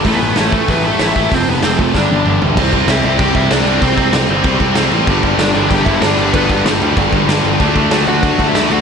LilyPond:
<<
  \new Staff \with { instrumentName = "Lead electric guitar" } { \time 4/4 \key a \mixolydian \tempo 4 = 190 <a a'>16 <b b'>8. <cis' cis''>8 <a a'>8 <b b'>8 <a a'>8 <e' e''>4 | <c' c''>8 <b b'>8 <c' c''>8 <a a'>8 <d' d''>4. r8 | \key c \lydian r4 <e' e''>8 <e' e''>8 <g' g''>8 <e' e''>8 <d' d''>4 | <c' c''>4 r2. |
r4 <d' d''>8 <d' d''>8 <g' g''>8 <e' e''>8 <d' d''>4 | <b b'>4 r2. | r4. <fis' fis''>4~ <fis' fis''>16 <e' e''>8. <fis' fis''>8 | }
  \new Staff \with { instrumentName = "Distorted electric guitar" } { \clef bass \time 4/4 \key a \mixolydian <a, e a>8 <a, e a>8 <a, e a>8 <a, e a>8 <a, e a>8 <a, e a>8 <a, e a>8 <a, e a>8 | <f, c f>8 <f, c f>8 <f, c f>8 <f, c f>8 <g, d g>8 <g, d g>8 <g, d g>8 <g, d g>8 | \key c \lydian <c g c'>8 <c g c'>8 <c g c'>8 <c g c'>8 <c g c'>8 <c g c'>8 <c g c'>8 <c g c'>8 | <c g c'>8 <c g c'>8 <c g c'>8 <c g c'>8 <c g c'>8 <c g c'>8 <c g c'>8 <c g c'>8 |
<g, d g>8 <g, d g>8 <g, d g>8 <g, d g>8 <g, d g>8 <g, d g>8 <g, d g>8 <g, d g>8 | <g, d g>8 <g, d g>8 <g, d g>8 <g, d g>8 <g, d g>8 <g, d g>8 <g, d g>8 <g, d g>8 | <d a d'>8 <d a d'>8 <d a d'>8 <d a d'>8 <d a d'>8 <d a d'>8 <d a d'>8 <d a d'>8 | }
  \new Staff \with { instrumentName = "Overdriven electric guitar" } { \clef bass \time 4/4 \key a \mixolydian <a, e a>8 <a, e a>8 <a, e a>8 <a, e a>8 <a, e a>8 <a, e a>8 <a, e a>8 <a, e a>8 | <f, c f>8 <f, c f>8 <f, c f>8 <f, c f>8 <g, d g>8 <g, d g>8 <g, d g>8 <g, d g>8 | \key c \lydian <c g c'>8 <c g c'>8 <c g c'>8 <c g c'>8 <c g c'>8 <c g c'>8 <c g c'>8 <c g c'>8 | <c g c'>8 <c g c'>8 <c g c'>8 <c g c'>8 <c g c'>8 <c g c'>8 <c g c'>8 <c g c'>8 |
<g, d g>8 <g, d g>8 <g, d g>8 <g, d g>8 <g, d g>8 <g, d g>8 <g, d g>8 <g, d g>8 | <g, d g>8 <g, d g>8 <g, d g>8 <g, d g>8 <g, d g>8 <g, d g>8 <g, d g>8 <g, d g>8 | <d a d'>8 <d a d'>8 <d a d'>8 <d a d'>8 <d a d'>8 <d a d'>8 <d a d'>8 <d a d'>8 | }
  \new Staff \with { instrumentName = "Picked electric bass" } { \clef bass \time 4/4 \key a \mixolydian a,,8 a,,8 a,,8 a,,8 a,,4 a,,8 a,,8 | f,,8 f,,8 f,,8 f,,8 g,,8 g,,8 g,,8 g,,8 | \key c \lydian c,4 c,8 c,8 c,8 c,8 c,8 c,8 | c,8 c,8 c,8 g,,8 c,8 c,8 c,8 a,,8 |
g,,4 g,,8 g,,8 g,,8 g,,8 g,,8 g,,8 | g,,8 g,,8 g,,8 d,8 g,,8 g,,8 g,,8 g,,8 | d,4 d,8 d,8 d,8 d,8 d,8 d,8 | }
  \new DrumStaff \with { instrumentName = "Drums" } \drummode { \time 4/4 <hho bd>4 <hho sn>8 bd8 <hho bd>4 <hho sn>8 bd8 | <hho bd>4 <hho sn>8 bd8 <bd sn>8 tommh8 toml8 tomfh8 | <cymc bd>8 <cymc bd>8 <cymc sn>8 cymc8 <cymc bd>8 <cymc bd>8 <cymc sn>8 cymc8 | <cymc bd>8 <cymc bd>8 <cymc sn>8 cymc8 <cymc bd>8 <cymc bd>8 <cymc sn>8 cymc8 |
<cymc bd>8 <cymc bd>8 <cymc sn>8 cymc8 <cymc bd>8 <cymc bd>8 <cymc sn>8 cymc8 | <cymc bd>8 <cymc bd>8 <cymc sn>8 cymc8 <cymc bd>8 <cymc bd>8 <cymc sn>8 cymc8 | <cymc bd>8 <cymc bd>8 <cymc sn>8 cymc8 <cymc bd>8 <cymc bd>8 <cymc sn>8 cymc8 | }
>>